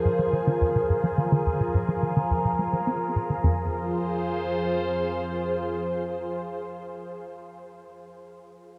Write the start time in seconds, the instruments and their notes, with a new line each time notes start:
Already playing: synth drone F2, ambient pad F3 F4 G#4 A#4, synth texture C5
0.05 analog synth bass G#2
0.19 analog synth bass F3
0.33 analog synth bass D#3
0.47 analog synth bass D#3
0.61 analog synth bass F2
0.75 analog synth bass C3
0.89 analog synth bass G#2
1.03 analog synth bass F3
1.18 analog synth bass D#3
1.32 analog synth bass D#3
1.46 analog synth bass F2
1.60 analog synth bass C3
1.74 analog synth bass G#2
1.88 analog synth bass F3
2.02 analog synth bass D#3
2.16 analog synth bass D#3
2.30 analog synth bass F2
2.45 analog synth bass C3
2.59 analog synth bass G#3
2.73 analog synth bass F3
2.87 analog synth bass C4
3.16 analog synth bass A#2
3.30 analog synth bass D#3
3.44 analog synth bass F2, synth drone F2, ambient pad F3 F4 G#4 C5